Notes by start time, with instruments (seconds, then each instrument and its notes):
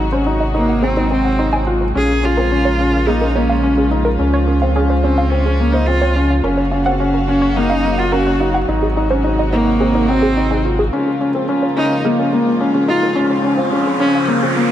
Already playing: sub bass G#1, string section C3 F#3 G#3 D#4 F#4
0.13 felt piano C#4, synth arpeggio sound C5
0.27 felt piano D#4
0.40 synth arpeggio sound D#5
0.54 viola A#3, felt piano D#4
0.69 synth arpeggio sound F#5
0.82 felt piano C4, viola C4, synth arpeggio sound G#4
0.97 felt piano D#4, synth arpeggio sound C5
1.11 felt piano C4, viola C4, synth arpeggio sound C5
1.25 synth arpeggio sound F#5
1.39 felt piano D#4, synth arpeggio sound C6
1.53 felt piano D#4, synth arpeggio sound G#5
1.67 felt piano F4, synth arpeggio sound F#5
1.81 synth arpeggio sound C5
1.95 sub bass A#1, string section C#3 F3 A#3 F4, felt piano C#4, viola G#4
2.09 synth arpeggio sound G#4
2.23 felt piano C#4, viola F4
2.37 felt piano C4, synth arpeggio sound A#4
2.52 felt piano C#4
2.65 synth arpeggio sound C#5
2.80 felt piano C#4
2.93 synth arpeggio sound F5
3.07 felt piano A#3, viola D#4, synth arpeggio sound G#4
3.21 felt piano C#4, synth arpeggio sound A#4
3.35 felt piano A#3, viola C#4, synth arpeggio sound C#5
3.49 synth arpeggio sound F5
3.64 felt piano C#4
3.77 felt piano C#4, synth arpeggio sound G#4
3.91 felt piano D#4
4.05 synth arpeggio sound A#4
4.19 sub bass C#2, felt piano C#4, string section C5
4.34 synth arpeggio sound C#5
4.48 felt piano C#4
4.62 felt piano C4, synth arpeggio sound F5
4.76 felt piano C#4, synth arpeggio sound G#4
4.90 synth arpeggio sound C5
5.03 viola C4, felt piano C#4, synth arpeggio sound C#5
5.18 synth arpeggio sound F5
5.30 felt piano C4, viola C#4
5.46 felt piano C#4, synth arpeggio sound G#4
5.60 felt piano A#3
5.73 viola D#4, synth arpeggio sound C5
5.87 felt piano C4, viola F4
6.02 felt piano C4, synth arpeggio sound C#5
6.16 felt piano C#4
6.30 synth arpeggio sound F5
6.43 sub bass F#1, string section F#3 A#3 F#4 F5, felt piano C#4, synth arpeggio sound A#4
6.58 synth arpeggio sound C#5
6.71 felt piano C#4, synth arpeggio sound F5
6.86 felt piano C4, synth arpeggio sound F#5
7.00 felt piano C#4
7.14 synth arpeggio sound A#4
7.28 felt piano C#4, viola C#4
7.42 synth arpeggio sound C#5
7.57 felt piano A#3, viola D#4
7.70 felt piano C#4, synth arpeggio sound F5
7.85 felt piano A#3
7.98 viola F4, synth arpeggio sound F#5
8.12 felt piano C#4, viola F#4, synth arpeggio sound A#4
8.26 felt piano C#4, synth arpeggio sound C#5
8.40 felt piano D#4, synth arpeggio sound F5
8.54 synth arpeggio sound F#5
8.68 sub bass G#1, string section C3 G#3 D#4 F#4, felt piano D#4
8.83 synth arpeggio sound G#4
8.97 felt piano D#4
9.11 felt piano C#4, synth arpeggio sound C5
9.24 felt piano D#4
9.39 synth arpeggio sound D#5
9.53 viola A#3, felt piano D#4
9.67 synth arpeggio sound F#5
9.80 felt piano C4, synth arpeggio sound G#4
9.95 felt piano D#4, synth arpeggio sound C5
10.08 viola C4, felt piano C4, synth arpeggio sound F#5
10.22 synth arpeggio sound G#4
10.37 felt piano D#4
10.51 felt piano D#4, synth arpeggio sound G#4
10.65 felt piano F4
10.79 synth arpeggio sound G#4
10.92 sub bass A#1, string section C#3 F3 G#3 A#3 F4, felt piano C#4, riser
11.07 synth arpeggio sound G#4
11.21 felt piano C#4
11.35 felt piano C4, synth arpeggio sound A#4
11.49 felt piano C#4
11.63 synth arpeggio sound C#5
11.77 felt piano C#4, viola D#4
11.91 synth arpeggio sound F5
12.05 felt piano A#3, synth arpeggio sound G#4
12.19 felt piano C#4, synth arpeggio sound A#4
12.33 felt piano A#3, synth arpeggio sound C#5
12.47 synth arpeggio sound F5
12.61 felt piano C#4
12.74 felt piano C#4, synth arpeggio sound G#4
12.88 felt piano D#4, viola F4
13.03 synth arpeggio sound A#4
13.16 sub bass C#2, string section C#3 F3 C4, felt piano C#4
13.31 synth arpeggio sound C#5
13.44 felt piano C#4
13.57 felt piano C4, synth arpeggio sound F5
13.72 felt piano C#4, synth arpeggio sound G#4
13.87 synth arpeggio sound C5
14.00 felt piano C#4, viola C#4, synth arpeggio sound C#5
14.15 synth arpeggio sound F5
14.28 felt piano A#3
14.43 felt piano C4, synth arpeggio sound G#4
14.56 felt piano A#3